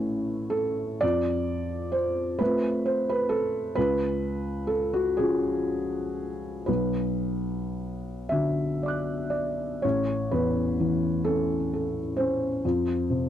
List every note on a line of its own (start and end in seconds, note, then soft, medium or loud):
0.00 1.05 A1 soft
0.00 0.98 A3 soft
0.00 0.98 C#4 soft
0.00 0.98 E4 soft
0.00 0.52 B4 medium
0.00 1.04 C#5 medium
0.00 1.05 E5 medium
0.50 1.01 A4 medium
1.01 2.36 F2 medium
1.01 1.94 D5 medium
1.92 2.38 C5 medium
2.39 3.73 A3 soft
2.39 3.73 C4 soft
2.39 3.74 F4 soft
2.39 2.84 B4 medium
2.86 3.08 C5 medium
3.09 3.31 B4 medium
3.29 3.76 A4 medium
3.75 5.14 C#2 medium
3.75 4.69 B4 medium
4.67 4.92 A4 medium
4.93 5.18 F#4 medium
5.17 6.64 F3 soft
5.17 6.64 C#4 soft
5.17 6.64 F4 soft
5.17 6.67 G#4 medium
6.66 8.26 B1 soft
6.66 8.30 B4 medium
8.29 9.80 D3 soft
8.29 9.80 D4 soft
8.29 9.80 F#4 soft
8.29 9.33 E5 medium
8.83 9.29 D5 soft
8.83 9.81 D6 soft
8.88 9.82 F#6 soft
9.30 9.82 D5 soft
9.82 12.59 A1 soft
9.82 10.31 C#5 medium
10.31 11.07 E2 soft
10.31 11.25 B4 medium
10.80 11.54 E3 soft
11.25 12.00 C#4 soft
11.25 11.72 A4 medium
11.74 12.46 A4 soft
12.17 12.64 C#4 soft
12.17 13.29 C5 medium
12.65 13.29 F2 medium
13.10 13.29 C3 soft